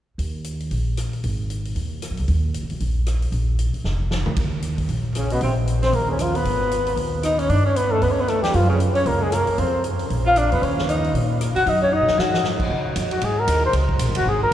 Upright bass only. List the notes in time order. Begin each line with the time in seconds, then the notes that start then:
0.18 D#2
0.71 A#1
1.24 G#1
1.75 D#2
2.11 F#2
2.19 C#2
2.28 D#2
2.63 F2
2.71 D2
2.81 A#1
3.32 A#1
3.74 muted upright bass stroke
3.84 F1
4.26 E2
4.37 D#2
4.88 A#1
5.41 A#1
5.93 D#2
6.45 G#1
6.96 D#2
7.49 G2
8.02 D2
8.54 F#2
9.06 C#2
9.47 muted upright bass stroke
9.58 F2
10.10 A#1
10.52 E2
10.62 D#2
11.14 A#2
11.56 muted upright bass stroke
11.66 F#2
12.01 A#2
12.09 F#2
12.19 G#2
12.70 C#2
12.96 F2
13.22 G#2
13.47 D#2
13.73 C#2
13.99 A#1
14.08 G#1
14.17 F1
14.26 G#1